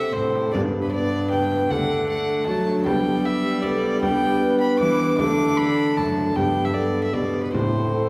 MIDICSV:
0, 0, Header, 1, 7, 480
1, 0, Start_track
1, 0, Tempo, 389105
1, 662, Time_signature, 3, 2, 24, 8
1, 9981, End_track
2, 0, Start_track
2, 0, Title_t, "Violin"
2, 0, Program_c, 0, 40
2, 0, Note_on_c, 0, 76, 71
2, 165, Note_on_c, 0, 72, 74
2, 184, Note_off_c, 0, 76, 0
2, 638, Note_off_c, 0, 72, 0
2, 646, Note_on_c, 0, 74, 69
2, 744, Note_off_c, 0, 74, 0
2, 1010, Note_on_c, 0, 71, 66
2, 1129, Note_off_c, 0, 71, 0
2, 1137, Note_on_c, 0, 74, 80
2, 1609, Note_off_c, 0, 74, 0
2, 1616, Note_on_c, 0, 79, 77
2, 2099, Note_on_c, 0, 78, 79
2, 2118, Note_off_c, 0, 79, 0
2, 2576, Note_off_c, 0, 78, 0
2, 2588, Note_on_c, 0, 78, 80
2, 3037, Note_off_c, 0, 78, 0
2, 3045, Note_on_c, 0, 81, 79
2, 3516, Note_off_c, 0, 81, 0
2, 3532, Note_on_c, 0, 79, 82
2, 4018, Note_on_c, 0, 76, 90
2, 4037, Note_off_c, 0, 79, 0
2, 4469, Note_on_c, 0, 74, 75
2, 4488, Note_off_c, 0, 76, 0
2, 4951, Note_off_c, 0, 74, 0
2, 4959, Note_on_c, 0, 79, 92
2, 5664, Note_off_c, 0, 79, 0
2, 5689, Note_on_c, 0, 83, 77
2, 5913, Note_off_c, 0, 83, 0
2, 5921, Note_on_c, 0, 86, 84
2, 6387, Note_off_c, 0, 86, 0
2, 6403, Note_on_c, 0, 86, 87
2, 6873, Note_on_c, 0, 83, 93
2, 6891, Note_off_c, 0, 86, 0
2, 7361, Note_on_c, 0, 81, 74
2, 7380, Note_off_c, 0, 83, 0
2, 7841, Note_on_c, 0, 79, 77
2, 7860, Note_off_c, 0, 81, 0
2, 8206, Note_on_c, 0, 76, 67
2, 8224, Note_off_c, 0, 79, 0
2, 8312, Note_on_c, 0, 74, 69
2, 8331, Note_off_c, 0, 76, 0
2, 8675, Note_off_c, 0, 74, 0
2, 8686, Note_on_c, 0, 76, 61
2, 8806, Note_on_c, 0, 74, 71
2, 8824, Note_off_c, 0, 76, 0
2, 9162, Note_off_c, 0, 74, 0
2, 9169, Note_on_c, 0, 71, 59
2, 9286, Note_off_c, 0, 71, 0
2, 9294, Note_on_c, 0, 72, 70
2, 9981, Note_off_c, 0, 72, 0
2, 9981, End_track
3, 0, Start_track
3, 0, Title_t, "Recorder"
3, 0, Program_c, 1, 74
3, 0, Note_on_c, 1, 69, 72
3, 652, Note_on_c, 1, 67, 57
3, 670, Note_off_c, 1, 69, 0
3, 1124, Note_off_c, 1, 67, 0
3, 1132, Note_on_c, 1, 72, 61
3, 1189, Note_on_c, 1, 71, 66
3, 1202, Note_off_c, 1, 72, 0
3, 2075, Note_off_c, 1, 71, 0
3, 2092, Note_on_c, 1, 69, 73
3, 3030, Note_off_c, 1, 69, 0
3, 3042, Note_on_c, 1, 66, 60
3, 3517, Note_on_c, 1, 67, 67
3, 3535, Note_off_c, 1, 66, 0
3, 4476, Note_off_c, 1, 67, 0
3, 4484, Note_on_c, 1, 71, 63
3, 4526, Note_on_c, 1, 69, 68
3, 4538, Note_off_c, 1, 71, 0
3, 4947, Note_off_c, 1, 69, 0
3, 4954, Note_on_c, 1, 67, 66
3, 5409, Note_off_c, 1, 67, 0
3, 5416, Note_on_c, 1, 71, 77
3, 6401, Note_on_c, 1, 69, 72
3, 6419, Note_off_c, 1, 71, 0
3, 7492, Note_off_c, 1, 69, 0
3, 7841, Note_on_c, 1, 67, 64
3, 8325, Note_on_c, 1, 69, 66
3, 8344, Note_off_c, 1, 67, 0
3, 8788, Note_on_c, 1, 67, 57
3, 8807, Note_off_c, 1, 69, 0
3, 9290, Note_on_c, 1, 64, 51
3, 9308, Note_off_c, 1, 67, 0
3, 9730, Note_off_c, 1, 64, 0
3, 9778, Note_on_c, 1, 69, 65
3, 9981, Note_off_c, 1, 69, 0
3, 9981, End_track
4, 0, Start_track
4, 0, Title_t, "Harp"
4, 0, Program_c, 2, 46
4, 0, Note_on_c, 2, 48, 44
4, 0, Note_on_c, 2, 55, 53
4, 0, Note_on_c, 2, 60, 41
4, 0, Note_on_c, 2, 67, 42
4, 126, Note_off_c, 2, 60, 0
4, 141, Note_on_c, 2, 60, 42
4, 147, Note_off_c, 2, 67, 0
4, 161, Note_on_c, 2, 67, 40
4, 176, Note_on_c, 2, 45, 45
4, 623, Note_on_c, 2, 62, 40
4, 634, Note_on_c, 2, 71, 42
4, 647, Note_on_c, 2, 43, 49
4, 661, Note_off_c, 2, 60, 0
4, 678, Note_off_c, 2, 48, 0
4, 679, Note_off_c, 2, 45, 0
4, 1089, Note_off_c, 2, 62, 0
4, 1104, Note_on_c, 2, 62, 40
4, 1110, Note_off_c, 2, 71, 0
4, 1125, Note_on_c, 2, 71, 41
4, 1574, Note_off_c, 2, 62, 0
4, 1589, Note_on_c, 2, 62, 44
4, 1591, Note_off_c, 2, 71, 0
4, 1606, Note_on_c, 2, 71, 44
4, 2042, Note_on_c, 2, 57, 47
4, 2046, Note_off_c, 2, 62, 0
4, 2060, Note_on_c, 2, 62, 47
4, 2071, Note_on_c, 2, 69, 43
4, 2083, Note_on_c, 2, 50, 50
4, 2108, Note_off_c, 2, 67, 0
4, 2111, Note_off_c, 2, 43, 0
4, 2111, Note_off_c, 2, 71, 0
4, 2121, Note_off_c, 2, 55, 0
4, 2516, Note_off_c, 2, 57, 0
4, 2531, Note_on_c, 2, 57, 46
4, 2533, Note_off_c, 2, 62, 0
4, 2541, Note_off_c, 2, 69, 0
4, 2548, Note_on_c, 2, 62, 45
4, 2556, Note_on_c, 2, 69, 44
4, 2983, Note_off_c, 2, 57, 0
4, 2998, Note_on_c, 2, 57, 43
4, 3002, Note_off_c, 2, 62, 0
4, 3017, Note_on_c, 2, 62, 43
4, 3025, Note_off_c, 2, 69, 0
4, 3039, Note_on_c, 2, 69, 46
4, 3052, Note_on_c, 2, 54, 52
4, 3463, Note_on_c, 2, 59, 50
4, 3467, Note_off_c, 2, 62, 0
4, 3482, Note_on_c, 2, 62, 48
4, 3498, Note_on_c, 2, 67, 46
4, 3513, Note_on_c, 2, 55, 49
4, 3521, Note_off_c, 2, 57, 0
4, 3541, Note_off_c, 2, 50, 0
4, 3542, Note_off_c, 2, 69, 0
4, 3548, Note_off_c, 2, 54, 0
4, 4413, Note_off_c, 2, 59, 0
4, 4428, Note_on_c, 2, 59, 47
4, 4433, Note_off_c, 2, 62, 0
4, 4442, Note_off_c, 2, 67, 0
4, 4448, Note_on_c, 2, 62, 49
4, 4457, Note_on_c, 2, 67, 46
4, 4906, Note_off_c, 2, 59, 0
4, 4921, Note_on_c, 2, 59, 47
4, 4923, Note_off_c, 2, 62, 0
4, 4937, Note_off_c, 2, 67, 0
4, 4938, Note_on_c, 2, 62, 49
4, 4952, Note_on_c, 2, 67, 47
4, 5867, Note_off_c, 2, 59, 0
4, 5882, Note_on_c, 2, 59, 45
4, 5887, Note_off_c, 2, 62, 0
4, 5901, Note_on_c, 2, 62, 46
4, 5902, Note_off_c, 2, 67, 0
4, 5917, Note_on_c, 2, 67, 43
4, 5935, Note_on_c, 2, 52, 52
4, 6363, Note_off_c, 2, 62, 0
4, 6368, Note_on_c, 2, 57, 43
4, 6378, Note_on_c, 2, 62, 48
4, 6396, Note_off_c, 2, 59, 0
4, 6403, Note_on_c, 2, 66, 44
4, 6406, Note_off_c, 2, 55, 0
4, 6414, Note_off_c, 2, 67, 0
4, 6415, Note_on_c, 2, 50, 52
4, 6423, Note_off_c, 2, 52, 0
4, 7302, Note_off_c, 2, 57, 0
4, 7317, Note_on_c, 2, 57, 45
4, 7318, Note_off_c, 2, 62, 0
4, 7326, Note_off_c, 2, 66, 0
4, 7333, Note_on_c, 2, 62, 44
4, 7341, Note_on_c, 2, 66, 43
4, 7365, Note_on_c, 2, 42, 48
4, 7772, Note_off_c, 2, 62, 0
4, 7779, Note_on_c, 2, 59, 45
4, 7787, Note_on_c, 2, 62, 43
4, 7809, Note_on_c, 2, 67, 45
4, 7821, Note_on_c, 2, 43, 50
4, 7834, Note_off_c, 2, 57, 0
4, 7845, Note_off_c, 2, 66, 0
4, 7858, Note_off_c, 2, 42, 0
4, 7862, Note_off_c, 2, 50, 0
4, 8793, Note_on_c, 2, 47, 44
4, 9246, Note_on_c, 2, 57, 40
4, 9261, Note_on_c, 2, 72, 40
4, 9270, Note_on_c, 2, 64, 42
4, 9277, Note_off_c, 2, 59, 0
4, 9281, Note_off_c, 2, 62, 0
4, 9292, Note_off_c, 2, 67, 0
4, 9296, Note_on_c, 2, 45, 44
4, 9298, Note_off_c, 2, 43, 0
4, 9303, Note_off_c, 2, 47, 0
4, 9981, Note_off_c, 2, 45, 0
4, 9981, Note_off_c, 2, 57, 0
4, 9981, Note_off_c, 2, 64, 0
4, 9981, Note_off_c, 2, 72, 0
4, 9981, End_track
5, 0, Start_track
5, 0, Title_t, "Trombone"
5, 0, Program_c, 3, 57
5, 0, Note_on_c, 3, 60, 62
5, 140, Note_off_c, 3, 60, 0
5, 191, Note_on_c, 3, 60, 49
5, 667, Note_on_c, 3, 59, 58
5, 685, Note_off_c, 3, 60, 0
5, 1128, Note_off_c, 3, 59, 0
5, 1136, Note_on_c, 3, 59, 60
5, 1608, Note_off_c, 3, 59, 0
5, 1623, Note_on_c, 3, 59, 51
5, 2094, Note_on_c, 3, 57, 58
5, 2113, Note_off_c, 3, 59, 0
5, 2567, Note_off_c, 3, 57, 0
5, 2574, Note_on_c, 3, 57, 61
5, 3042, Note_off_c, 3, 57, 0
5, 3053, Note_on_c, 3, 57, 59
5, 3527, Note_on_c, 3, 59, 59
5, 3546, Note_off_c, 3, 57, 0
5, 4471, Note_off_c, 3, 59, 0
5, 4478, Note_on_c, 3, 59, 57
5, 4949, Note_off_c, 3, 59, 0
5, 4963, Note_on_c, 3, 59, 64
5, 5900, Note_off_c, 3, 59, 0
5, 5913, Note_on_c, 3, 59, 53
5, 6396, Note_on_c, 3, 57, 63
5, 6415, Note_off_c, 3, 59, 0
5, 7019, Note_off_c, 3, 57, 0
5, 7356, Note_on_c, 3, 57, 54
5, 7835, Note_on_c, 3, 59, 55
5, 7853, Note_off_c, 3, 57, 0
5, 8314, Note_off_c, 3, 59, 0
5, 8323, Note_on_c, 3, 59, 55
5, 8792, Note_off_c, 3, 59, 0
5, 8807, Note_on_c, 3, 59, 54
5, 9298, Note_on_c, 3, 60, 58
5, 9317, Note_off_c, 3, 59, 0
5, 9981, Note_off_c, 3, 60, 0
5, 9981, End_track
6, 0, Start_track
6, 0, Title_t, "Cello"
6, 0, Program_c, 4, 42
6, 0, Note_on_c, 4, 48, 59
6, 130, Note_off_c, 4, 48, 0
6, 177, Note_on_c, 4, 45, 54
6, 657, Note_on_c, 4, 43, 62
6, 676, Note_off_c, 4, 45, 0
6, 2097, Note_off_c, 4, 43, 0
6, 2102, Note_on_c, 4, 50, 67
6, 3050, Note_on_c, 4, 54, 59
6, 3069, Note_off_c, 4, 50, 0
6, 3526, Note_on_c, 4, 55, 67
6, 3545, Note_off_c, 4, 54, 0
6, 5933, Note_on_c, 4, 52, 58
6, 5951, Note_off_c, 4, 55, 0
6, 6399, Note_on_c, 4, 50, 68
6, 6417, Note_off_c, 4, 52, 0
6, 7359, Note_on_c, 4, 42, 59
6, 7377, Note_off_c, 4, 50, 0
6, 7835, Note_off_c, 4, 42, 0
6, 7846, Note_on_c, 4, 43, 61
6, 8784, Note_off_c, 4, 43, 0
6, 8802, Note_on_c, 4, 47, 53
6, 9286, Note_on_c, 4, 45, 60
6, 9305, Note_off_c, 4, 47, 0
6, 9981, Note_off_c, 4, 45, 0
6, 9981, End_track
7, 0, Start_track
7, 0, Title_t, "Frame drum"
7, 195, Note_on_c, 9, 64, 48
7, 318, Note_off_c, 9, 64, 0
7, 435, Note_on_c, 9, 64, 47
7, 558, Note_off_c, 9, 64, 0
7, 673, Note_on_c, 9, 64, 76
7, 796, Note_off_c, 9, 64, 0
7, 1629, Note_on_c, 9, 64, 46
7, 1752, Note_off_c, 9, 64, 0
7, 1871, Note_on_c, 9, 64, 49
7, 1994, Note_off_c, 9, 64, 0
7, 2114, Note_on_c, 9, 64, 68
7, 2238, Note_off_c, 9, 64, 0
7, 3051, Note_on_c, 9, 64, 47
7, 3174, Note_off_c, 9, 64, 0
7, 3293, Note_on_c, 9, 64, 51
7, 3416, Note_off_c, 9, 64, 0
7, 3530, Note_on_c, 9, 64, 75
7, 3653, Note_off_c, 9, 64, 0
7, 4480, Note_on_c, 9, 64, 48
7, 4603, Note_off_c, 9, 64, 0
7, 4727, Note_on_c, 9, 64, 50
7, 4850, Note_off_c, 9, 64, 0
7, 4965, Note_on_c, 9, 64, 74
7, 5088, Note_off_c, 9, 64, 0
7, 5916, Note_on_c, 9, 64, 49
7, 6039, Note_off_c, 9, 64, 0
7, 6164, Note_on_c, 9, 64, 45
7, 6288, Note_off_c, 9, 64, 0
7, 6401, Note_on_c, 9, 64, 74
7, 6524, Note_off_c, 9, 64, 0
7, 7366, Note_on_c, 9, 64, 44
7, 7489, Note_off_c, 9, 64, 0
7, 7609, Note_on_c, 9, 64, 50
7, 7733, Note_off_c, 9, 64, 0
7, 7842, Note_on_c, 9, 64, 72
7, 7966, Note_off_c, 9, 64, 0
7, 8808, Note_on_c, 9, 64, 46
7, 8931, Note_off_c, 9, 64, 0
7, 9050, Note_on_c, 9, 64, 46
7, 9174, Note_off_c, 9, 64, 0
7, 9305, Note_on_c, 9, 64, 73
7, 9428, Note_off_c, 9, 64, 0
7, 9981, End_track
0, 0, End_of_file